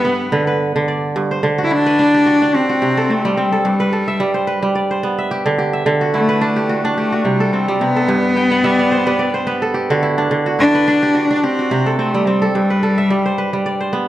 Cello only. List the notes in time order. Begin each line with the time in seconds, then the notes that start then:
Already playing: B3
1.64 E4
1.72 D4
2.55 C4
3.09 A3
3.37 G3
3.64 G3
6.14 A3
6.97 A3
7.24 G3
7.80 B3
10.60 D4
11.36 D4
11.44 C4
11.99 A3
12.26 G3
12.55 G3